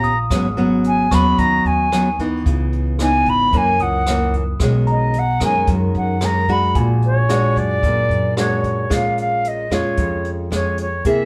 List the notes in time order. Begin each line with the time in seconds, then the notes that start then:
Already playing: A#1 B3 C#4 G4 F5 A#5
0.03 D#6, kick, closed hi-hat
0.30 G#1 G#2 F#3 B3 C#4, kick, cross-stick, closed hi-hat
0.57 F#3 B3 C#4, closed hi-hat
0.84 G#5, closed hi-hat
1.11 D#2 F#3 B3 C#4 B5 C#6, kick, cross-stick, closed hi-hat
1.38 D#2 D#3 A#5, kick, closed hi-hat
1.64 D#2 G#5, closed hi-hat
1.92 F#3 B3 C#4, cross-stick, closed hi-hat
2.19 E3 B3 D#4, kick, closed hi-hat
2.46 C#2 C#3, kick, closed hi-hat
2.73 closed hi-hat
2.99 E3 B3 D#4 G#5, cross-stick, closed hi-hat
3.26 G#1 B5, kick, closed hi-hat
3.53 F#2 E3 A#3 C#4, kick, closed hi-hat
3.57 G#5
3.79 C#2 F#5 D#6, closed hi-hat
4.06 E3 A#3 C#4, cross-stick, closed hi-hat
4.33 kick, closed hi-hat
4.60 B1 B2 D#3 G#3 C#4, kick, cross-stick, closed hi-hat
4.87 D#5 A#5, closed hi-hat
5.13 closed hi-hat
5.19 F#5
5.40 F#2 D#3 G#3 C#4, kick, cross-stick, closed hi-hat
5.44 G#5
5.67 F#2, kick, closed hi-hat
5.94 F#2 F#5, closed hi-hat
6.21 D#3 G#3 C#4, cross-stick, closed hi-hat
6.25 A#5
6.48 G#3 D4 F#4 B5, kick, closed hi-hat
6.75 A#1 A#2 G#5, kick, closed hi-hat
7.02 C#5, closed hi-hat
7.29 G#3 D4 F#4, cross-stick, closed hi-hat
7.56 F#2 D5, kick, closed hi-hat
7.83 F#2 A#2, kick, closed hi-hat
8.09 F#2, closed hi-hat
8.37 G#3 D4 F#4 C#5, cross-stick, closed hi-hat
8.64 kick, closed hi-hat
8.90 A#1 A#2 G#3 C#4 F4 F5, kick, cross-stick, closed hi-hat
9.18 F5, closed hi-hat
9.45 D#5, closed hi-hat
9.70 F2 G#3 C#4 F4 C#5, cross-stick, closed hi-hat
9.97 F2, kick, closed hi-hat
10.25 closed hi-hat
10.51 F2 G#3 C#4 F4 C#5, cross-stick, closed hi-hat
10.78 C#5, closed hi-hat
11.05 C2 C3 A#3 E4 G#4 E5, kick, closed hi-hat